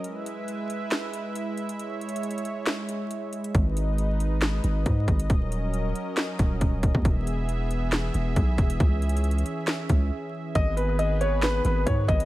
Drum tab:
HH |x-----x-----x-----x-----x-----x-----x-----x--x--|x-----x-x-x-x-x-x-x-----x-----x-----x-----x--x--|x-----x-----x-----x-----x-----x-----x-----x--x--|x-----x-----x-----x-----x-----x-----x-----x-----|
CP |------------------------x-----------------------|------------------------x-----------------------|------------------------x-----------------------|------------------------x-----------------------|
SD |------------------------o-----------------------|------------------------o-----------------------|------------------------o-----------------------|------------------------o-----------------------|
BD |------------------------------------------------|------------------------------------------------|o-----------------------------------o-----o-----|o-----------------------------o-----o-----o--o--|

HH |x-----x-----x-----x-----x-----x-----x-----x--x--|x-----x-x-x-x-x-x-x-----x-----x-----------------|x-----x-----x-----x-----x-----x-----x-----x--x--|
CP |------------------------x-----------------------|------------------------x-----------------------|------------------------x-----------------------|
SD |------------------------o-----------------------|------------------------o-----------------------|------------------------o-----------------------|
BD |o-----------------------------------o-----o-----|o-----------------------------o-----------------|o-----------------------------------o-----o-----|